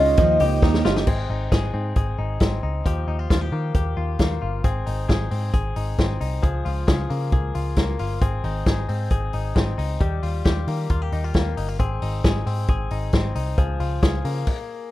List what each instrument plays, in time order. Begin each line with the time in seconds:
Already playing: picked electric bass C#2, clean electric guitar G#3 C#4 F4, steel-string acoustic guitar F4 C#5, soft synth lead D#5
0.00 steel-string acoustic guitar C#4
0.17 picked electric bass D#2, steel-string acoustic guitar D#3 F3 A#3 D#4 G4 D#5, clean electric guitar F3, kick, hi-hat pedal, ride
0.40 picked electric bass C#2, steel-string acoustic guitar A#3 D#4 G4 D#5, clean electric guitar G4, open hi-hat
0.62 picked electric bass D#2, steel-string acoustic guitar A#3 D#4 G4 D#5, clean electric guitar D#4, kick, snare
0.74 snare
0.85 picked electric bass G1, steel-string acoustic guitar A#3 D#4 G4 D#5, clean electric guitar F4, snare
0.96 clean electric guitar G4, snare
1.07 picked electric bass G#1, clean electric guitar C4 G#4, kick, crash
1.30 picked electric bass G#1, clean electric guitar D#4
1.52 picked electric bass G#1, clean electric guitar G#4, kick, snare, closed hi-hat
1.74 picked electric bass G#2, clean electric guitar C4
1.96 picked electric bass G#1, clean electric guitar G#4, kick, closed hi-hat
2.19 picked electric bass G#1, clean electric guitar D#4
2.40 picked electric bass G#1, clean electric guitar C4, kick, snare, closed hi-hat
2.63 picked electric bass C#2, clean electric guitar D#4
2.86 picked electric bass D#2, clean electric guitar F3 G4, kick, closed hi-hat
3.07 picked electric bass D#2, clean electric guitar D#4
3.19 clean electric guitar F4
3.30 picked electric bass D#2, clean electric guitar F4, kick, snare, closed hi-hat
3.41 clean electric guitar G4
3.52 picked electric bass D#3, clean electric guitar A#3
3.74 picked electric bass D#2, clean electric guitar G4, kick, closed hi-hat
3.97 picked electric bass D#2, clean electric guitar F4
4.19 picked electric bass D#2, clean electric guitar A#3, kick, snare, closed hi-hat
4.42 picked electric bass G1, clean electric guitar F4
4.64 picked electric bass G#1, clean electric guitar C4 G#4, kick, closed hi-hat
4.86 picked electric bass G#1, clean electric guitar D#4, open hi-hat
5.09 picked electric bass G#1, clean electric guitar G#4, kick, snare, closed hi-hat
5.31 picked electric bass G#2, clean electric guitar C4, open hi-hat
5.53 picked electric bass G#1, clean electric guitar G#4, kick, closed hi-hat
5.76 picked electric bass G#1, clean electric guitar D#4, open hi-hat
5.98 picked electric bass G#1, clean electric guitar C4, kick, snare, closed hi-hat
6.21 picked electric bass C2, clean electric guitar D#4, open hi-hat
6.43 picked electric bass C#2, clean electric guitar F3 G#4, kick, closed hi-hat
6.65 picked electric bass C#2, clean electric guitar F4, open hi-hat
6.87 picked electric bass C#2, clean electric guitar G#4, kick, snare, closed hi-hat
7.10 picked electric bass C#3, clean electric guitar A#3, open hi-hat
7.32 picked electric bass C#2, clean electric guitar G#4, kick, closed hi-hat
7.55 picked electric bass C#2, clean electric guitar F4, open hi-hat
7.76 picked electric bass C#2, clean electric guitar A#3, kick, snare, closed hi-hat
7.99 picked electric bass G1, clean electric guitar F4, open hi-hat
8.21 picked electric bass G#1, clean electric guitar C4 G#4, kick, closed hi-hat
8.44 picked electric bass G#1, clean electric guitar D#4, open hi-hat
8.66 picked electric bass G#1, clean electric guitar G#4, kick, snare, closed hi-hat
8.89 picked electric bass G#2, clean electric guitar C4, open hi-hat
9.10 picked electric bass G#1, clean electric guitar G#4, kick, closed hi-hat
9.33 picked electric bass G#1, clean electric guitar D#4, open hi-hat
9.55 picked electric bass G#1, clean electric guitar C4, kick, snare, closed hi-hat
9.78 picked electric bass C#2, clean electric guitar D#4, open hi-hat
10.01 picked electric bass D#2, clean electric guitar G3 G4, kick, closed hi-hat
10.23 picked electric bass D#2, clean electric guitar F4, open hi-hat
10.45 picked electric bass D#2, clean electric guitar G4, kick, snare, closed hi-hat
10.67 picked electric bass D#3, clean electric guitar A#3, open hi-hat
10.90 picked electric bass D#2, clean electric guitar F4, kick, closed hi-hat
11.02 clean electric guitar G4
11.12 picked electric bass D#2, clean electric guitar D#4, open hi-hat
11.24 clean electric guitar F4
11.34 picked electric bass D#2, clean electric guitar A#3, kick, snare, closed hi-hat
11.57 picked electric bass G1, clean electric guitar D#4, open hi-hat
11.69 clean electric guitar F4
11.79 picked electric bass G#1, clean electric guitar C4 G#4, kick, closed hi-hat
12.02 picked electric bass G#1, clean electric guitar D#4, open hi-hat
12.24 picked electric bass G#1, clean electric guitar G#4, kick, snare, closed hi-hat
12.46 picked electric bass G#2, clean electric guitar C4, open hi-hat
12.68 picked electric bass G#1, clean electric guitar G#4, kick, closed hi-hat
12.91 picked electric bass G#1, clean electric guitar D#4, open hi-hat
13.13 picked electric bass G#1, clean electric guitar C4, kick, snare, closed hi-hat
13.35 picked electric bass C2, clean electric guitar D#4, open hi-hat
13.58 picked electric bass C#2, clean electric guitar F3 G#4, kick, closed hi-hat
13.80 picked electric bass C#2, clean electric guitar F4, open hi-hat
14.03 picked electric bass C#2, clean electric guitar G#4, kick, snare, closed hi-hat
14.25 picked electric bass C#3, clean electric guitar A#3, open hi-hat
14.47 kick, crash